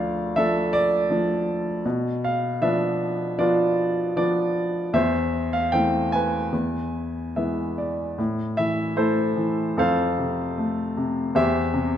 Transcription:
0.00 1.81 D2 medium
0.00 0.33 F3 soft
0.00 0.33 A3 soft
0.00 0.34 D4 soft
0.00 0.32 F4 medium
0.00 0.73 D5 medium
0.00 0.37 F5 medium
0.36 1.08 F3 soft
0.36 1.08 A3 soft
0.36 1.08 D4 soft
0.36 1.82 A4 medium
0.36 0.74 E5 medium
0.73 1.43 D5 medium
1.10 1.83 F3 soft
1.10 1.83 A3 soft
1.10 1.83 D4 soft
1.85 4.90 B2 medium
2.24 2.63 F5 medium
2.61 3.36 F3 soft
2.61 3.36 B3 soft
2.61 3.37 D4 medium
2.61 3.41 E5 medium
3.38 4.14 F3 soft
3.38 4.14 B3 soft
3.38 4.14 D4 medium
3.38 4.91 F4 medium
3.38 4.15 D5 medium
4.16 4.91 F3 soft
4.16 4.91 B3 soft
4.16 4.92 D4 soft
4.16 4.90 D5 medium
4.93 6.49 E2 medium
4.93 6.50 C5 medium
4.93 5.55 E5 medium
5.53 5.74 F5 medium
5.72 6.51 E3 soft
5.72 6.51 A3 soft
5.72 6.51 C4 soft
5.72 6.14 G5 medium
6.12 7.76 B4 medium
6.12 7.32 G#5 medium
6.52 8.14 E2 medium
7.36 8.16 E3 soft
7.36 8.16 G#3 soft
7.36 8.16 B3 soft
7.36 7.75 E5 soft
7.78 8.15 D5 soft
8.18 9.73 A2 medium
8.57 9.35 E3 soft
8.57 8.98 E5 medium
8.96 9.74 A3 soft
8.96 9.73 E4 soft
8.96 9.73 A4 soft
8.96 9.73 C5 medium
9.37 9.76 E3 soft
9.77 11.31 F2 medium
9.77 11.32 A4 medium
9.77 11.32 C5 medium
9.77 11.41 F5 medium
10.18 10.96 C3 soft
10.58 11.33 A3 soft
10.97 11.35 C3 soft
11.35 11.97 E2 medium
11.35 11.97 G4 medium
11.35 11.97 C5 medium
11.35 11.97 E5 medium
11.74 11.97 C3 medium

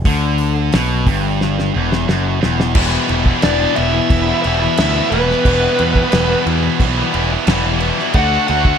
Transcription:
0.05 0.69 D2 loud
0.05 0.73 D3 medium
0.05 kick loud
0.05 open hi-hat medium
0.38 open hi-hat medium
0.73 1.05 B1 loud
0.73 1.07 B2 loud
0.73 snare loud
0.73 open hi-hat medium
1.06 1.70 G1 medium
1.06 1.74 G2 loud
1.06 kick loud
1.06 open hi-hat medium
1.41 snare medium
1.59 snare medium
1.76 2.07 E1 medium
1.76 2.08 E2 loud
1.92 snare medium
2.09 2.40 F#1 medium
2.09 2.42 F#2 loud
2.09 snare medium
2.42 2.75 E1 loud
2.42 2.73 E2 loud
2.42 snare medium
2.60 snare medium
2.74 2.97 E1 medium
2.74 3.43 E2 medium
2.74 3.43 B2 medium
2.74 3.29 E3 medium
2.74 3.28 G3 medium
2.74 3.26 B3 medium
2.74 3.25 E4 medium
2.74 kick loud
2.74 crash loud
2.74 crash medium
3.09 3.31 E1 medium
3.09 3.42 E3 medium
3.09 3.44 G3 medium
3.09 3.45 B3 medium
3.09 3.46 E4 medium
3.09 crash medium
3.26 3.45 E3 medium
3.26 3.45 G3 medium
3.26 3.46 B3 medium
3.26 3.47 E4 medium
3.26 kick loud
3.42 3.66 E1 medium
3.42 4.79 E2 medium
3.42 4.11 B2 medium
3.42 3.77 E3 medium
3.42 3.78 G3 loud
3.42 3.79 B3 loud
3.42 3.75 D4 medium
3.42 3.78 D5 loud
3.42 snare loud
3.42 crash medium
3.47 3.80 E4 loud
3.75 3.99 E1 medium
3.75 3.95 E3 medium
3.75 3.95 G3 medium
3.75 4.40 E4 loud
3.75 4.39 E5 loud
3.75 crash medium
3.80 3.95 B3 medium
3.80 3.95 E4 medium
3.93 4.28 G3 medium
3.93 4.27 B3 medium
3.93 4.25 E4 medium
3.93 muted overdriven electric guitar stroke soft
4.10 4.32 E1 medium
4.10 kick loud
4.10 crash medium
4.29 4.44 E3 medium
4.29 4.45 G3 medium
4.29 4.46 B3 medium
4.29 4.47 E4 medium
4.43 4.67 E1 medium
4.43 4.76 B2 medium
4.43 4.63 E3 medium
4.43 4.64 G3 medium
4.43 5.13 E5 loud
4.43 crash medium
4.47 4.77 E2 medium
4.47 4.63 B3 medium
4.47 4.63 E4 medium
4.61 4.78 G3 medium
4.61 4.79 B3 medium
4.61 4.81 E4 medium
4.61 muted overdriven electric guitar stroke medium
4.77 5.00 D2 medium
4.77 5.29 E2 loud
4.77 5.30 B2 loud
4.77 5.00 E3 loud
4.77 snare loud
4.77 crash loud
4.82 4.98 G3 loud
4.82 4.98 B3 loud
4.82 4.97 E4 loud
4.98 5.12 E3 medium
4.98 5.13 G3 medium
4.98 5.14 B3 medium
4.98 5.15 E4 medium
5.10 5.33 E1 medium
5.10 5.45 E3 medium
5.10 6.42 B4 medium
5.10 crash medium
5.15 5.46 G3 medium
5.15 5.47 B3 medium
5.15 5.47 E4 medium
5.28 5.45 G3 medium
5.28 5.47 B3 medium
5.28 5.48 E4 medium
5.28 snare soft
5.45 5.67 E1 loud
5.45 6.12 E2 medium
5.45 6.14 B2 medium
5.45 6.00 E3 medium
5.45 5.99 G3 medium
5.45 5.98 B3 loud
5.45 5.96 E4 medium
5.45 kick loud
5.45 crash medium
5.79 6.01 E2 medium
5.79 6.12 E3 medium
5.79 6.13 G3 medium
5.79 6.14 B3 medium
5.79 6.15 E4 medium
5.79 crash medium
5.95 6.16 B3 medium
5.95 6.16 E4 medium
5.95 kick medium
6.00 6.15 E3 medium
6.00 6.15 G3 medium
6.12 6.35 E1 loud
6.12 6.80 E2 loud
6.12 6.81 B2 loud
6.12 snare loud
6.12 crash medium
6.16 6.46 E3 loud
6.16 6.47 G3 loud
6.16 6.49 B3 loud
6.16 6.49 E4 loud
6.47 6.68 E2 medium
6.47 6.65 E3 medium
6.47 6.64 G3 medium
6.47 6.64 B3 medium
6.47 6.64 E4 medium
6.47 crash medium
6.63 6.99 G3 medium
6.63 6.98 B3 medium
6.63 6.96 E4 medium
6.63 muted overdriven electric guitar stroke soft
6.80 7.02 B1 loud
6.80 kick loud
6.80 crash medium
6.98 7.12 E3 medium
6.98 7.14 G3 medium
6.98 7.15 B3 medium
6.98 7.15 E4 medium
7.13 7.36 E1 medium
7.13 7.45 E2 medium
7.13 7.45 B2 medium
7.13 7.32 E3 medium
7.13 7.32 G3 medium
7.13 7.32 B3 medium
7.13 7.32 E4 medium
7.13 crash medium
7.32 7.48 G3 medium
7.32 7.49 B3 medium
7.32 7.49 E4 medium
7.32 muted overdriven electric guitar stroke medium
7.47 7.91 E1 loud
7.47 7.98 E2 loud
7.47 7.99 B2 medium
7.47 7.68 E3 loud
7.47 7.67 G3 loud
7.47 7.66 B3 loud
7.47 snare loud
7.47 crash medium
7.51 7.64 E4 loud
7.66 7.80 E3 medium
7.66 7.81 G3 medium
7.66 7.82 B3 medium
7.66 7.84 E4 medium
7.80 8.13 E3 medium
7.80 8.14 G3 medium
7.80 8.14 B3 medium
7.80 crash medium
7.85 8.15 E4 medium
7.98 8.15 G3 medium
7.98 8.14 B3 medium
7.98 8.13 E4 medium
7.98 snare soft
8.14 8.37 D2 medium
8.14 8.78 D3 medium
8.14 8.68 A3 medium
8.14 8.67 D4 loud
8.14 8.65 F#4 loud
8.14 8.46 F#5 loud
8.14 kick loud
8.14 crash medium
8.47 8.71 D2 loud
8.47 8.78 D3 medium
8.47 8.78 A3 medium
8.47 8.78 D4 medium
8.47 8.78 F#4 medium
8.47 8.78 F#5 medium
8.47 crash medium
8.52 8.78 F#4 medium
8.65 8.78 A3 medium
8.65 8.78 D4 medium
8.65 8.78 F#4 medium
8.65 kick medium

